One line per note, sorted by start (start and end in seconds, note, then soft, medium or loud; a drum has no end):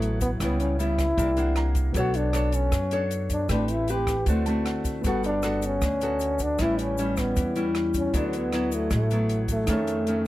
0.00 0.37 A1 medium
0.00 0.39 A2 medium
0.00 0.38 F#3 medium
0.00 0.18 A3 medium
0.00 0.39 B3 medium
0.00 0.36 E4 soft
0.00 0.39 E4 medium
0.00 0.38 F#4 soft
0.00 0.39 A4 soft
0.00 0.40 B4 soft
0.00 closed hi-hat soft
0.21 0.31 B3 medium
0.21 kick soft
0.21 closed hi-hat soft
0.21 shaker medium
0.37 1.14 C#2 medium
0.37 1.16 C#3 medium
0.37 0.76 G3 medium
0.37 1.15 E4 soft
0.37 1.16 G4 soft
0.37 kick medium
0.37 cross-stick medium
0.37 closed hi-hat medium
0.37 shaker medium
0.42 0.77 B3 medium
0.42 0.60 B3 medium
0.42 0.77 E4 medium
0.42 1.17 B4 soft
0.42 1.18 C#5 medium
0.60 0.78 C#4 medium
0.60 closed hi-hat soft
0.60 shaker soft
0.79 1.05 G3 medium
0.79 1.06 B3 soft
0.79 1.06 E4 medium
0.79 1.73 E4 medium
0.79 closed hi-hat soft
0.79 shaker soft
0.98 kick soft
0.98 cross-stick medium
0.98 closed hi-hat soft
0.98 shaker medium
1.16 1.91 C2 medium
1.16 1.93 C3 medium
1.16 1.29 A#3 medium
1.16 1.29 D4 medium
1.16 1.93 E4 soft
1.16 1.30 E4 medium
1.16 1.94 G4 soft
1.16 1.95 A#4 soft
1.16 kick medium
1.16 closed hi-hat soft
1.16 shaker medium
1.22 1.96 D5 medium
1.37 1.92 A#3 medium
1.37 1.92 D4 medium
1.37 1.92 E4 medium
1.37 1.56 F#5 medium
1.37 closed hi-hat soft
1.37 shaker soft
1.56 1.93 A#5 medium
1.56 cross-stick medium
1.56 closed hi-hat soft
1.75 kick medium
1.75 closed hi-hat soft
1.75 shaker medium
1.92 2.68 B1 medium
1.92 3.45 B3 soft
1.92 2.71 B3 medium
1.92 2.31 D4 medium
1.92 3.46 F#4 soft
1.92 2.31 A4 medium
1.92 kick medium
1.92 closed hi-hat medium
1.92 shaker medium
1.97 2.17 F#4 medium
1.97 3.48 A4 soft
1.97 2.32 C#5 medium
1.97 3.49 C#5 medium
2.14 2.57 D4 medium
2.14 closed hi-hat soft
2.14 shaker soft
2.33 2.72 D4 soft
2.33 2.73 A4 medium
2.33 2.73 C#5 medium
2.33 cross-stick medium
2.33 closed hi-hat soft
2.33 shaker medium
2.52 3.05 C#4 medium
2.52 closed hi-hat soft
2.52 shaker medium
2.72 3.46 F#2 medium
2.72 3.48 F#3 medium
2.72 kick medium
2.72 cross-stick medium
2.72 closed hi-hat medium
2.72 shaker medium
2.91 3.47 D4 medium
2.91 3.47 A4 medium
2.91 3.47 C#5 medium
2.91 closed hi-hat soft
2.91 shaker soft
3.11 closed hi-hat soft
3.11 shaker medium
3.30 3.49 D4 medium
3.30 kick soft
3.30 closed hi-hat soft
3.30 shaker medium
3.47 4.23 A1 medium
3.47 4.26 A3 medium
3.47 3.86 C4 soft
3.47 4.22 E4 soft
3.47 4.25 G4 soft
3.47 3.86 G4 soft
3.47 3.86 B4 medium
3.47 kick medium
3.47 cross-stick medium
3.47 closed hi-hat medium
3.47 shaker medium
3.51 3.73 D4 medium
3.51 4.27 B4 soft
3.68 3.92 E4 medium
3.68 closed hi-hat soft
3.68 shaker soft
3.88 4.15 C4 medium
3.88 4.15 G4 medium
3.88 4.28 G4 medium
3.88 4.15 B4 medium
3.88 closed hi-hat soft
3.88 shaker medium
4.07 kick medium
4.07 cross-stick medium
4.07 closed hi-hat soft
4.07 shaker medium
4.23 5.00 D2 medium
4.23 5.01 E4 soft
4.23 5.02 F#4 soft
4.23 kick medium
4.23 closed hi-hat medium
4.23 shaker medium
4.28 5.03 D3 medium
4.28 4.44 A3 medium
4.28 4.44 C4 soft
4.28 4.45 F#4 medium
4.28 5.03 A4 soft
4.28 5.04 C5 soft
4.46 5.02 A3 medium
4.46 5.02 C4 medium
4.46 5.02 F#4 medium
4.46 4.64 A5 medium
4.46 closed hi-hat soft
4.46 shaker soft
4.64 5.01 F#5 soft
4.64 cross-stick medium
4.64 closed hi-hat soft
4.85 kick soft
4.85 closed hi-hat soft
4.85 shaker medium
5.01 5.78 G1 medium
5.01 6.55 B3 soft
5.01 6.55 F#4 soft
5.01 6.56 A4 soft
5.01 kick medium
5.01 closed hi-hat medium
5.01 shaker medium
5.06 5.81 G3 medium
5.06 5.30 B3 soft
5.06 5.23 F#4 medium
5.06 5.30 F#4 soft
5.06 5.30 A4 medium
5.06 6.58 B4 soft
5.23 5.67 D4 medium
5.23 closed hi-hat soft
5.23 shaker soft
5.42 5.82 B3 medium
5.42 5.82 F#4 soft
5.42 5.83 A4 medium
5.42 cross-stick medium
5.42 closed hi-hat soft
5.42 shaker medium
5.62 6.44 C#4 medium
5.62 closed hi-hat soft
5.62 shaker medium
5.81 6.55 D2 medium
5.81 6.58 D3 medium
5.81 kick medium
5.81 cross-stick medium
5.81 closed hi-hat soft
5.81 shaker medium
6.01 6.57 B3 medium
6.01 6.57 F#4 medium
6.01 6.57 A4 medium
6.01 closed hi-hat soft
6.01 shaker soft
6.20 closed hi-hat soft
6.20 shaker medium
6.39 6.63 D4 medium
6.39 kick soft
6.39 closed hi-hat soft
6.39 shaker medium
6.57 7.33 A1 medium
6.57 7.36 A2 medium
6.57 6.96 G3 medium
6.57 8.10 C#4 soft
6.57 8.09 E4 soft
6.57 kick medium
6.57 cross-stick medium
6.57 closed hi-hat medium
6.57 shaker medium
6.61 6.96 C#4 medium
6.61 6.96 E4 medium
6.61 6.82 E4 medium
6.61 8.12 G4 soft
6.61 8.13 B4 soft
6.79 7.21 C#4 medium
6.79 closed hi-hat soft
6.79 shaker soft
6.98 7.53 G3 medium
6.98 7.54 C#4 medium
6.98 7.54 E4 medium
6.98 closed hi-hat soft
6.98 shaker soft
7.17 7.69 B3 medium
7.17 kick soft
7.17 cross-stick medium
7.17 closed hi-hat soft
7.17 shaker medium
7.36 8.10 E2 medium
7.36 8.12 E3 medium
7.36 kick medium
7.36 closed hi-hat medium
7.36 shaker medium
7.55 8.11 G3 medium
7.55 8.11 C#4 medium
7.55 8.11 E4 medium
7.55 closed hi-hat soft
7.55 shaker soft
7.75 cross-stick medium
7.75 closed hi-hat soft
7.94 8.19 C#4 medium
7.94 kick soft
7.94 closed hi-hat soft
7.94 shaker medium
8.10 8.87 D2 medium
8.10 8.89 D3 medium
8.10 8.50 F#3 medium
8.10 9.64 E4 soft
8.10 9.65 F#4 soft
8.10 kick medium
8.10 closed hi-hat medium
8.10 shaker medium
8.14 8.50 B3 medium
8.14 8.27 D4 medium
8.14 8.50 E4 medium
8.14 9.66 A4 soft
8.14 9.67 B4 soft
8.28 8.37 C#4 medium
8.33 8.76 B3 medium
8.33 closed hi-hat soft
8.33 shaker soft
8.53 9.08 F#3 medium
8.53 9.08 B3 medium
8.53 9.08 E4 medium
8.53 cross-stick medium
8.53 closed hi-hat soft
8.72 8.93 A3 medium
8.72 closed hi-hat soft
8.72 shaker medium
8.91 9.64 A1 medium
8.91 9.67 A2 medium
8.91 9.47 A3 medium
8.91 kick medium
8.91 cross-stick medium
8.91 closed hi-hat medium
8.91 shaker medium
9.11 9.66 F#3 medium
9.11 9.66 B3 medium
9.11 9.66 E4 medium
9.11 closed hi-hat soft
9.11 shaker soft
9.29 closed hi-hat soft
9.48 10.27 A3 medium
9.48 kick medium
9.48 closed hi-hat soft
9.48 shaker medium
9.65 10.27 F2 medium
9.65 10.04 D#3 medium
9.65 10.04 A3 medium
9.65 10.04 C#4 medium
9.65 10.27 D#4 soft
9.65 10.27 G#4 soft
9.65 kick medium
9.65 cross-stick medium
9.65 closed hi-hat medium
9.65 shaker medium
9.69 10.27 A4 soft
9.69 10.27 C#5 medium
9.87 closed hi-hat soft
9.87 shaker soft
10.07 10.27 D#3 medium
10.07 10.27 A3 medium
10.07 10.27 C#4 medium
10.07 closed hi-hat soft